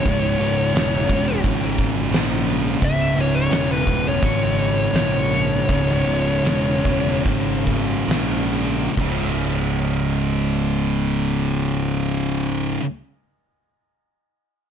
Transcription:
Already playing: lead electric guitar C#5
0.05 picked electric bass C#1, distorted electric guitar C#2 G#2 C#3, kick, closed hi-hat
0.39 picked electric bass C#1, closed hi-hat
0.75 picked electric bass E1, snare, closed hi-hat
1.08 picked electric bass E1, distorted electric guitar C#2 G#2 C#3, kick, closed hi-hat
1.43 picked electric bass G#1, distorted electric guitar C#2 G#2 C#3, kick, closed hi-hat
1.79 kick, closed hi-hat
2.11 picked electric bass A#1, snare, closed hi-hat
2.48 closed hi-hat
2.81 picked electric bass C#1, distorted electric guitar C#2 G#2 C#3, lead electric guitar E5, kick, closed hi-hat
3.16 picked electric bass C#1, closed hi-hat
3.21 lead electric guitar C#5
3.36 lead electric guitar C#5
3.51 picked electric bass E1, snare, closed hi-hat
3.72 lead electric guitar B4
3.86 picked electric bass E1, distorted electric guitar C#2 G#2 C#3, kick, closed hi-hat
4.07 lead electric guitar C#5, snare
4.22 picked electric bass G#1, distorted electric guitar C#2 G#2 C#3, kick, closed hi-hat
4.58 closed hi-hat
4.94 picked electric bass A#1, lead electric guitar C#5, snare, closed hi-hat
5.32 closed hi-hat
5.69 picked electric bass C#1, distorted electric guitar C#2 G#2 C#3, kick, closed hi-hat
5.89 snare
6.06 picked electric bass C#1, closed hi-hat
6.45 picked electric bass E1, snare, closed hi-hat
6.85 picked electric bass E1, distorted electric guitar C#2 G#2 C#3, kick, closed hi-hat
7.07 snare
7.24 picked electric bass G#1, distorted electric guitar C#2 G#2 C#3, kick, closed hi-hat
7.67 kick, closed hi-hat
8.08 picked electric bass A#1, snare, closed hi-hat
8.53 closed hi-hat
8.97 picked electric bass C#1, distorted electric guitar C#2 G#2, kick, crash
9.01 distorted electric guitar C#3

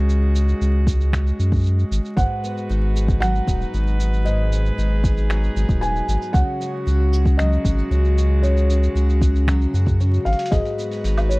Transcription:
Already playing: sub bass C#2, string quartet C#3 G#3 F#4
0.09 shaker
0.35 shaker
0.48 shaker
0.61 sub bass C#2, shaker
0.87 kick, shaker
1.01 shaker
1.13 finger snap, kick, shaker
1.27 shaker
1.39 sub bass F#2, shaker
1.52 kick, shaker
1.55 shaker
1.58 shaker
1.61 shaker
1.63 shaker
1.66 shaker
1.79 shaker
1.91 sub bass G#1, shaker
2.05 shaker
2.17 sub bass G#1, twelve-string acoustic guitar G#2, string quartet F#4 B4, felt piano F#5, kick, shaker
2.44 twelve-string acoustic guitar B3, shaker
2.57 shaker
2.69 sub bass G#1, twelve-string acoustic guitar D#4, shaker
2.96 twelve-string acoustic guitar G#4, shaker
3.08 kick, shaker
3.20 twelve-string acoustic guitar F#3, felt piano F#5, finger snap, shaker
3.35 shaker
3.47 sub bass D#1, twelve-string acoustic guitar D#4, kick, shaker
3.61 shaker
3.74 sub bass G#1, twelve-string acoustic guitar B3, shaker
3.87 shaker
4.00 twelve-string acoustic guitar D#4, shaker
4.13 shaker
4.25 twelve-string acoustic guitar G#2, string quartet G#4, felt piano D#5, shaker
4.52 twelve-string acoustic guitar B3, shaker
4.66 shaker
4.78 sub bass G#1, twelve-string acoustic guitar D#4, shaker
5.04 twelve-string acoustic guitar G#4, kick, shaker
5.17 shaker
5.30 twelve-string acoustic guitar F#3, finger snap, shaker
5.44 shaker
5.56 sub bass G#1, twelve-string acoustic guitar D#4, shaker
5.69 sub bass D#1, kick, shaker
5.81 twelve-string acoustic guitar B3, felt piano G#5, shaker
5.96 shaker
6.08 sub bass G#1, twelve-string acoustic guitar D#4, shaker
6.22 shaker
6.33 sub bass C#2, string quartet C#3 G#3 F#4, twelve-string acoustic guitar C#3, felt piano F#5, kick, shaker
6.61 twelve-string acoustic guitar C#4, shaker
6.87 sub bass C#2, twelve-string acoustic guitar F#4, shaker
7.13 twelve-string acoustic guitar G#4, shaker
7.25 kick, shaker
7.37 twelve-string acoustic guitar F#3, felt piano D#5, finger snap, shaker
7.52 shaker
7.65 sub bass G#1, twelve-string acoustic guitar F#4, kick, shaker
7.78 shaker
7.91 sub bass C#2, twelve-string acoustic guitar C#4, shaker
8.05 shaker
8.17 twelve-string acoustic guitar F#4, shaker
8.42 twelve-string acoustic guitar C#3, felt piano C#5, shaker
8.57 shaker
8.70 twelve-string acoustic guitar C#4, shaker
8.83 shaker
8.95 sub bass C#2, twelve-string acoustic guitar F#4, shaker
9.09 shaker
9.21 twelve-string acoustic guitar G#4, kick, shaker
9.35 shaker
9.47 twelve-string acoustic guitar F#3, finger snap, kick, shaker
9.61 shaker
9.74 sub bass F#2, twelve-string acoustic guitar F#4, shaker
9.86 kick, shaker
10.00 twelve-string acoustic guitar C#4, shaker
10.14 shaker
10.25 sub bass G#1, twelve-string acoustic guitar F#4, felt piano F5, closed hi-hat
10.33 closed hi-hat
10.39 closed hi-hat
10.46 closed hi-hat
10.51 sub bass G#1, twelve-string acoustic guitar G#2, string quartet G#3 F#4 B4, music box G#4, felt piano D#5, kick, open hi-hat, shaker
10.65 open hi-hat, shaker
10.78 twelve-string acoustic guitar B3, shaker
10.92 open hi-hat, shaker
11.04 sub bass G#1, twelve-string acoustic guitar D#4, open hi-hat, shaker
11.18 open hi-hat, low woodblock, shaker
11.29 twelve-string acoustic guitar B3, felt piano C#5, shaker

